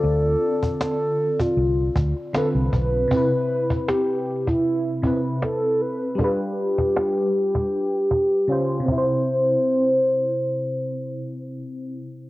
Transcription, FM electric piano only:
X:1
M:4/4
L:1/8
Q:"Swing 16ths" 1/4=78
K:C
V:1 name="FM electric piano"
[D,CFd]6 [D,CFB]2 | [C,CEB]4- [C,CEB] [C,CEB]3 | [G,DFB]6 [_D,_DFc] [C,CEc]- | [C,CEc]8 |]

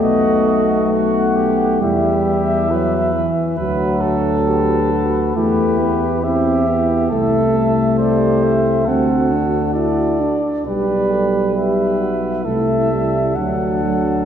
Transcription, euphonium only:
X:1
M:4/4
L:1/8
Q:1/4=68
K:Bphr
V:1 name="Euphonium"
A,4 G,2 F, E, | F,3 z A, B, C B, | A,4 C D E D | G,3 z A, G, F, F, |]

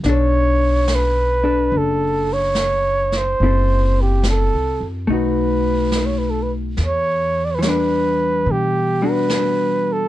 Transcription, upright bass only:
X:1
M:4/4
L:1/8
Q:"Swing" 1/4=71
K:Bm
V:1 name="Upright bass" clef=bass
B,,,4 F,,,4 | F,,,2- (3F,,, =C,, F,, B,,,4 | E,,4 B,,4 |]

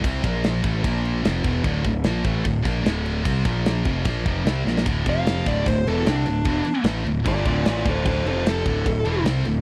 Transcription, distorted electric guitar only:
X:1
M:4/4
L:1/8
Q:1/4=150
K:Dm
V:1 name="Distorted electric guitar" clef=bass
[C,G,C] [B,,F,B,]2 [A,,E,A,] [B,,F,B,]2 [F,,C,F,] [E,,=B,,E,] | [D,,A,,D,] [D,,A,,] [B,,F,B,] [A,,E,A,] [D,,A,,] [B,,F,B,] [D,,A,,D,]2 | [C,G,C] [B,,F,B,]2 [F,,C,F,] [B,,F,B,] [F,,C,F,] [C,G,C] [B,,F,B,] | [D,,A,,D,] [F,,C,F,]2 [D,,A,,D,] [D,,A,,] [E,,=B,,E,] [C,G,C] [D,,A,,] |
[E,,=B,,E,] z [A,,E,A,] [D,,A,,] [G,,D,G,] [D,,A,,D,] [A,,E,A,] [D,,A,,D,] | [D,,A,,D,] [F,,C,F,]2 [D,,A,,D,] [D,,A,,] [E,,=B,,E,] [C,G,C] [D,,A,,] |]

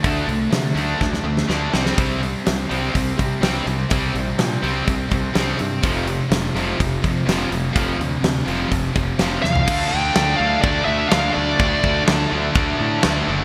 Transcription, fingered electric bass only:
X:1
M:4/4
L:1/8
Q:1/4=125
K:Dm
V:1 name="Fingered electric bass" clef=bass
D,, C,, C, D,, D,, D,, D,, C,, | C,,2 C,, C,, C,, C, C,, C,, | C,, B,,, B,, C,, C,, C,, C,, G,, | F,,,2 F,,, F,,, F,,, F,, F,,, F,,, |
F,,, D,, D,, F,,, F,,, F,,, F,,, E,, | D,, D,, D,, D,, D,, D,, D,, D,, | D,, D,, D,, D,, D,, A,, D,, ^F,,, |]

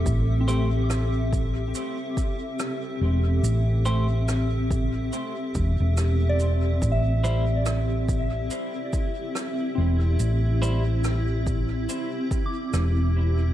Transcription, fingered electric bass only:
X:1
M:4/4
L:1/16
Q:"Swing 16ths" 1/4=71
K:Am
V:1 name="Fingered electric bass" clef=bass
A,,,8 z6 E,,,2 | A,,,8 z2 E,,, E,,,4- E,,, | A,,,8 z6 E,,,2 | A,,,8 z4 E,,,4 |]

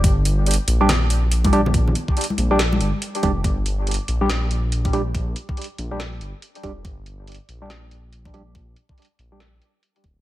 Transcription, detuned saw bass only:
X:1
M:4/4
L:1/8
Q:"Swing 16ths" 1/4=141
K:Gm
V:1 name="Detuned saw bass" clef=bass
G,,,2 z B,,,4- B,,,- | B,,, z2 B,,,2 G,,, z F,,, | G,,,2 z B,,,4- B,,,- | B,,, z2 B,,,2 G,,, z F,,, |
G,,,2 z B,,,4- B,,,- | B,,, z2 B,,,2 z2 D,,, |]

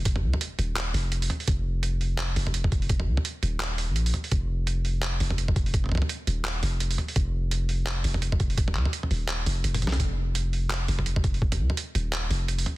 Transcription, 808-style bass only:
X:1
M:4/4
L:1/16
Q:"Swing 16ths" 1/4=169
K:Cm
V:1 name="808-style bass" clef=bass
F,,,2 D,, z3 E,,,4 F,,,4 z2 | F,,,8- F,,,2 F,,,6- | F,,,2 D,, z3 E,,,4- E,,, B,,,3 z2 | F,,,8- F,,,2 F,,,6- |
F,,,2 D,, z3 E,,,4 F,,,4 z2 | F,,,8- F,,,2 F,,,6- | F,,,2 D,, z3 E,,,4 F,,,2 F,,,2 C,,2 | F,,,8- F,,,2 F,,,6- |
F,,,2 D,, z3 E,,,4 F,,,4 z2 |]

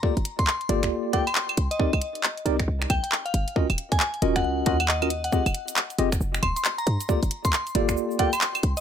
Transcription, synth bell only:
X:1
M:4/4
L:1/16
Q:"Swing 16ths" 1/4=136
K:Gphr
V:1 name="Synth bell"
z3 c' c' z4 z g c' z3 e- | e4- e z4 z g g z f z2 | z3 a a z2 _g g z g g e e z g | _g z8 z c' c' z b z2 |
z3 c' c' z4 z g c' z3 e |]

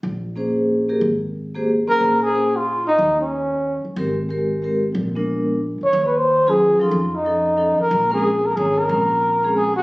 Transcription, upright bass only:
X:1
M:3/4
L:1/8
Q:"Swing" 1/4=183
K:Bbdor
V:1 name="Upright bass" clef=bass
B,,,6 | A,,,4- A,,, z | [K:Bbm] B,,,6 | E,,4- E,, z |
A,,,6 | B,,,4- B,,, z | E,,4- E,, z | F,,4- F,, z |
B,,,4 A,,,2 | B,,,6 |]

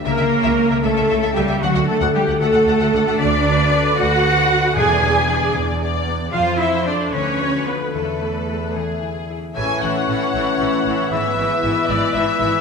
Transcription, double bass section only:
X:1
M:6/8
L:1/16
Q:3/8=76
K:D
V:1 name="Double bass section" clef=bass
C,, C,, z C,, z C,, C,, C,, C,, C,, C,, C,, | D,, D,, z D,, z D,, D,, D,, D,, D,, D,, D,, | [K:A] D,,4- D,, z D,,4- D,, z | E,,4- E,, z E,,4- E,, z |
=F,,6 D,,6 | E,,8- E,,2 z2 | A,,,2 A,,,2 A,,,2 A,,,2 A,,,2 A,,,2 | G,,,2 G,,,2 G,,,2 G,,,2 G,,,2 G,,,2 |]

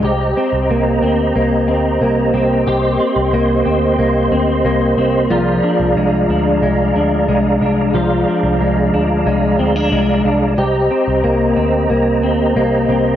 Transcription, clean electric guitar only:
X:1
M:4/4
L:1/16
Q:1/4=91
K:Cm
V:1 name="Clean electric guitar"
G2 C2 B,2 C2 B,2 C2 B,2 C2 | G2 C2 B,2 C2 B,2 C2 B,2 C2 | [F,F]2 D2 A,2 D2 A,2 D2 A,2 D2 | [F,F]2 D2 A,2 D2 A,2 C D A,2 D2 |
G2 C2 B,2 C2 B,2 C2 B,2 C2 |]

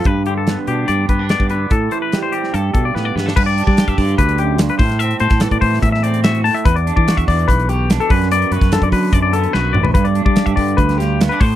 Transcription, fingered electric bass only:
X:1
M:4/4
L:1/16
Q:1/4=145
K:G
V:1 name="Fingered electric bass" clef=bass
G,,6 B,,2 G,,2 z3 G,,3 | A,,2 z6 G,,2 B,,2 A,,2 G,,2 | G,,3 G,2 G,, G,,2 D,,6 A,,2- | A,,2 A,, A,,2 A,, A,,2 A,,8 |
E,,3 E,2 E,, E,,2 B,,,6 F,,2- | F,,2 F,, F,,2 F,, F,2 F,,4 B,,,2 A,,,2 | G,,3 G,2 G,, G,,2 D,,6 A,,2 |]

